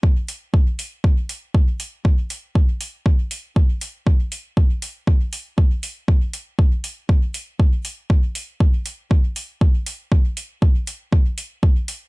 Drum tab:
HH |-o-o-o-o|-o-o-o-o|-o-o-o-o|-o-o-o-o|
BD |o-o-o-o-|o-o-o-o-|o-o-o-o-|o-o-o-o-|

HH |-o-o-o-o|-o-o-o-o|
BD |o-o-o-o-|o-o-o-o-|